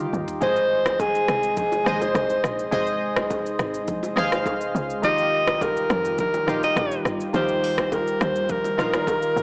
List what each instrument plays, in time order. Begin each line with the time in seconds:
Already playing: ambient pad D#3 G3 F4, synth keys D#3 D#4 F4 G4
0.13 log drum bass D#2, mid tom, shaker
0.28 floor tom, shaker
0.41 log drum bass G#1, ambient pad C3 G#3 D#4, synth keys G#3 G#4 C5 D#5, alto saxophone C5, kick, low conga, shaker
0.56 shaker
0.86 kick, cross-stick, low bongo, shaker
0.99 alto saxophone G#4, kick, high bongo, shaker
1.15 shaker
1.28 log drum bass C2, cross-stick, shaker
1.43 shaker
1.57 alto saxophone G#4, kick, low conga, shaker
1.72 low bongo, shaker
1.85 log drum bass D#2, synth keys G#3 G#4 C5 D#5, cross-stick, low conga, shaker
2.01 alto saxophone C5, low bongo, shaker
2.15 log drum bass C2, kick, cross-stick, high bongo, shaker
2.30 shaker
2.44 log drum bass A#1, cross-stick, shaker
2.59 shaker
2.71 log drum bass G#1, synth keys G#3 G#4 C5 D#5, kick, low conga, shaker
2.87 shaker
3.16 kick, cross-stick, low bongo, shaker
3.30 kick, high bongo, shaker
3.46 shaker
3.59 log drum bass G#1, cross-stick, shaker
3.74 shaker
3.88 kick, low conga, shaker
4.03 low bongo, shaker
4.16 log drum bass D#2, synth keys G#3 G#4 C5 F5, cross-stick, low conga, shaker
4.32 cross-stick, low bongo, shaker
4.46 kick, high bongo, shaker
4.61 shaker
4.75 log drum bass C#2, shaker
4.90 shaker
5.02 log drum bass D#2, synth keys D#3 D#4 F4 G4, ambient pad D#3 G3 F4, alto saxophone D#5, kick, low conga, shaker
5.18 shaker
5.47 kick, cross-stick, low bongo, shaker
5.61 alto saxophone A#4, kick, high bongo, shaker
5.77 shaker
5.90 log drum bass F2, cross-stick, shaker
6.05 shaker
6.18 alto saxophone A#4, kick, low conga, shaker
6.34 low bongo, shaker
6.47 log drum bass A#1, synth keys D#3 D#4 F4 G4, cross-stick, low conga, shaker
6.63 alto saxophone D#5, low bongo, shaker
6.76 log drum bass A#1, kick, cross-stick, high bongo, shaker
6.91 shaker
7.05 log drum bass G1, cross-stick, shaker
7.20 shaker
7.33 log drum bass D#2, synth keys D#3 D#4 F4 G4, alto saxophone C5, kick, low conga, shaker
7.48 shaker
7.64 open hi-hat, shaker
7.78 kick, cross-stick, low bongo, shaker
7.92 alto saxophone A#4, kick, high bongo, shaker
8.07 shaker
8.21 log drum bass D#2, alto saxophone C5, cross-stick, shaker
8.36 shaker
8.49 alto saxophone A#4, kick, low conga, shaker
8.64 low bongo, shaker
8.77 log drum bass A#1, synth keys D#3 D#4 F4 A#4, alto saxophone A#4, cross-stick, low conga, shaker
8.93 cross-stick, low bongo, shaker
9.07 kick, high bongo, shaker
9.22 shaker
9.36 log drum bass G1, shaker